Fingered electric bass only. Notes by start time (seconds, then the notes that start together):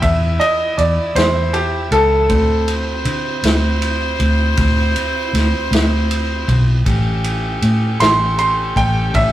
0.02 E2
0.78 E2
1.15 E2
1.91 C#2
2.30 D2
3.05 D3
3.43 D2
4.20 D2
4.58 D2
5.33 D2
5.71 D2
6.48 B1
6.86 A1
7.62 A2
8.00 A1
8.76 A1
9.14 A1